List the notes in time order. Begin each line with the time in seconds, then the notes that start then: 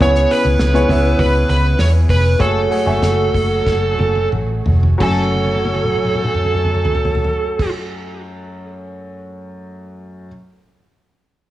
0.00 C#2 C#3 B3 C#4 E4 G#4 B4 C#5, kick, hi-hat pedal, open hi-hat
0.15 hi-hat pedal
0.30 B4, hi-hat pedal, open hi-hat
0.45 C#2, open hi-hat
0.59 C#2, snare, hi-hat pedal, open hi-hat
0.74 B3 E4 G#4 C#5, hi-hat pedal
0.89 C#2 B3 E4 G#4 E5, kick, hi-hat pedal, open hi-hat
1.19 C#2 B4, kick, hi-hat pedal, open hi-hat
1.49 C#2 B4, hi-hat pedal, open hi-hat
1.79 E2 C#5, snare, hi-hat pedal, open hi-hat
2.09 F1 B4, kick, hi-hat pedal, open hi-hat
2.39 F#1 F#3 A3 F#4 G#4 A4 C#5, kick, hi-hat pedal, open hi-hat
2.70 A3 F#4 G#4 C#5, hi-hat pedal, open hi-hat
2.86 F#1 A3 F#4 E5 G#5
3.02 F#1, snare, hi-hat pedal, open hi-hat
3.34 F#1, kick, hi-hat pedal, open hi-hat
3.66 F#1, kick, snare
3.99 F#1, high tom
4.15 high tom
4.32 A1, mid tom
4.66 F1, floor tom
4.83 floor tom
4.98 F#1 F#2 F#3 A3 F#4 A4 C#5 G#5, kick, crash
5.02 G#5
5.35 high tom
5.45 high tom
5.55 high tom
5.65 high tom
5.75 high tom
5.85 mid tom
5.95 mid tom
6.05 mid tom
6.15 mid tom
6.25 mid tom
6.35 mid tom
6.45 mid tom
6.55 mid tom
6.65 mid tom
6.75 mid tom
6.85 floor tom
6.95 floor tom
7.05 floor tom
7.15 floor tom
7.25 floor tom
7.59 kick, crash